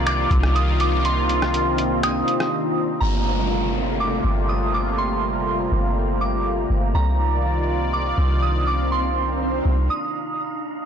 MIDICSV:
0, 0, Header, 1, 8, 480
1, 0, Start_track
1, 0, Key_signature, -2, "minor"
1, 0, Tempo, 491803
1, 1022, Time_signature, 4, 2, 24, 8
1, 10594, End_track
2, 0, Start_track
2, 0, Title_t, "Synth bell"
2, 0, Program_c, 0, 98
2, 66, Note_on_c, 0, 86, 98
2, 515, Note_off_c, 0, 86, 0
2, 540, Note_on_c, 0, 87, 81
2, 769, Note_off_c, 0, 87, 0
2, 787, Note_on_c, 0, 86, 85
2, 1012, Note_off_c, 0, 86, 0
2, 1028, Note_on_c, 0, 84, 104
2, 1946, Note_off_c, 0, 84, 0
2, 1985, Note_on_c, 0, 87, 86
2, 2904, Note_off_c, 0, 87, 0
2, 2932, Note_on_c, 0, 82, 102
2, 3858, Note_off_c, 0, 82, 0
2, 3906, Note_on_c, 0, 86, 75
2, 4355, Note_off_c, 0, 86, 0
2, 4381, Note_on_c, 0, 87, 73
2, 4609, Note_off_c, 0, 87, 0
2, 4626, Note_on_c, 0, 86, 71
2, 4852, Note_off_c, 0, 86, 0
2, 4862, Note_on_c, 0, 84, 103
2, 6023, Note_off_c, 0, 84, 0
2, 6061, Note_on_c, 0, 86, 74
2, 6289, Note_off_c, 0, 86, 0
2, 6781, Note_on_c, 0, 82, 92
2, 7702, Note_off_c, 0, 82, 0
2, 7744, Note_on_c, 0, 86, 91
2, 8194, Note_off_c, 0, 86, 0
2, 8220, Note_on_c, 0, 87, 70
2, 8449, Note_off_c, 0, 87, 0
2, 8463, Note_on_c, 0, 86, 80
2, 8690, Note_off_c, 0, 86, 0
2, 8704, Note_on_c, 0, 84, 94
2, 9624, Note_off_c, 0, 84, 0
2, 9663, Note_on_c, 0, 87, 77
2, 10583, Note_off_c, 0, 87, 0
2, 10594, End_track
3, 0, Start_track
3, 0, Title_t, "Synth texture"
3, 0, Program_c, 1, 99
3, 0, Note_on_c, 1, 62, 77
3, 0, Note_on_c, 1, 63, 83
3, 0, Note_on_c, 1, 77, 73
3, 0, Note_on_c, 1, 82, 88
3, 2903, Note_off_c, 1, 77, 0
3, 2904, Note_off_c, 1, 62, 0
3, 2904, Note_off_c, 1, 63, 0
3, 2904, Note_off_c, 1, 82, 0
3, 2943, Note_on_c, 1, 82, 85
3, 2943, Note_on_c, 1, 93, 71
3, 2944, Note_on_c, 1, 72, 72
3, 2945, Note_on_c, 1, 65, 74
3, 4843, Note_off_c, 1, 93, 0
3, 4860, Note_on_c, 1, 79, 71
3, 6744, Note_off_c, 1, 72, 0
3, 6745, Note_off_c, 1, 65, 0
3, 6761, Note_off_c, 1, 79, 0
3, 6781, Note_on_c, 1, 77, 71
3, 6782, Note_on_c, 1, 63, 76
3, 6783, Note_on_c, 1, 62, 70
3, 10583, Note_off_c, 1, 77, 0
3, 10583, Note_off_c, 1, 82, 0
3, 10584, Note_off_c, 1, 62, 0
3, 10584, Note_off_c, 1, 63, 0
3, 10594, End_track
4, 0, Start_track
4, 0, Title_t, "Analog synth pad"
4, 0, Program_c, 2, 89
4, 0, Note_on_c, 2, 48, 84
4, 0, Note_on_c, 2, 51, 77
4, 0, Note_on_c, 2, 58, 78
4, 0, Note_on_c, 2, 65, 92
4, 0, Note_on_c, 2, 74, 76
4, 1003, Note_off_c, 2, 74, 0
4, 1024, Note_on_c, 2, 60, 78
4, 2903, Note_off_c, 2, 48, 0
4, 2903, Note_off_c, 2, 51, 0
4, 2903, Note_off_c, 2, 65, 0
4, 2904, Note_off_c, 2, 58, 0
4, 2924, Note_off_c, 2, 60, 0
4, 2941, Note_on_c, 2, 48, 79
4, 2941, Note_on_c, 2, 58, 72
4, 2942, Note_on_c, 2, 55, 73
4, 2942, Note_on_c, 2, 57, 75
4, 2943, Note_on_c, 2, 65, 86
4, 6743, Note_off_c, 2, 55, 0
4, 6743, Note_off_c, 2, 57, 0
4, 6744, Note_off_c, 2, 65, 0
4, 6783, Note_on_c, 2, 74, 74
4, 6784, Note_on_c, 2, 65, 86
4, 6785, Note_on_c, 2, 51, 71
4, 9622, Note_off_c, 2, 48, 0
4, 9622, Note_off_c, 2, 58, 0
4, 9634, Note_off_c, 2, 65, 0
4, 9634, Note_off_c, 2, 74, 0
4, 9635, Note_off_c, 2, 51, 0
4, 10594, End_track
5, 0, Start_track
5, 0, Title_t, "808-style bass"
5, 0, Program_c, 3, 38
5, 0, Note_on_c, 3, 36, 125
5, 262, Note_off_c, 3, 36, 0
5, 301, Note_on_c, 3, 36, 112
5, 2182, Note_off_c, 3, 36, 0
5, 2941, Note_on_c, 3, 31, 114
5, 4102, Note_off_c, 3, 31, 0
5, 4140, Note_on_c, 3, 31, 109
5, 5542, Note_off_c, 3, 31, 0
5, 5580, Note_on_c, 3, 31, 107
5, 6503, Note_off_c, 3, 31, 0
5, 6540, Note_on_c, 3, 31, 104
5, 6771, Note_off_c, 3, 31, 0
5, 6781, Note_on_c, 3, 36, 113
5, 7942, Note_off_c, 3, 36, 0
5, 7981, Note_on_c, 3, 36, 110
5, 9382, Note_off_c, 3, 36, 0
5, 9422, Note_on_c, 3, 36, 103
5, 9652, Note_off_c, 3, 36, 0
5, 10594, End_track
6, 0, Start_track
6, 0, Title_t, "Downlifter"
6, 0, Program_c, 4, 103
6, 2941, Note_on_c, 4, 60, 78
6, 6781, Note_off_c, 4, 60, 0
6, 10594, End_track
7, 0, Start_track
7, 0, Title_t, "Swell"
7, 0, Program_c, 5, 103
7, 6781, Note_on_c, 5, 60, 79
7, 9661, Note_off_c, 5, 60, 0
7, 10594, End_track
8, 0, Start_track
8, 0, Title_t, "Drums"
8, 64, Note_on_c, 9, 42, 81
8, 65, Note_on_c, 9, 26, 127
8, 162, Note_off_c, 9, 42, 0
8, 163, Note_off_c, 9, 26, 0
8, 301, Note_on_c, 9, 36, 99
8, 303, Note_on_c, 9, 42, 70
8, 398, Note_off_c, 9, 36, 0
8, 401, Note_off_c, 9, 42, 0
8, 424, Note_on_c, 9, 37, 93
8, 522, Note_off_c, 9, 37, 0
8, 545, Note_on_c, 9, 42, 79
8, 642, Note_off_c, 9, 42, 0
8, 781, Note_on_c, 9, 42, 68
8, 878, Note_off_c, 9, 42, 0
8, 1023, Note_on_c, 9, 42, 79
8, 1121, Note_off_c, 9, 42, 0
8, 1263, Note_on_c, 9, 42, 67
8, 1361, Note_off_c, 9, 42, 0
8, 1388, Note_on_c, 9, 37, 100
8, 1486, Note_off_c, 9, 37, 0
8, 1504, Note_on_c, 9, 42, 84
8, 1601, Note_off_c, 9, 42, 0
8, 1741, Note_on_c, 9, 42, 72
8, 1838, Note_off_c, 9, 42, 0
8, 1985, Note_on_c, 9, 42, 82
8, 1986, Note_on_c, 9, 26, 127
8, 2082, Note_off_c, 9, 42, 0
8, 2083, Note_off_c, 9, 26, 0
8, 2224, Note_on_c, 9, 42, 68
8, 2322, Note_off_c, 9, 42, 0
8, 2344, Note_on_c, 9, 37, 93
8, 2442, Note_off_c, 9, 37, 0
8, 10594, End_track
0, 0, End_of_file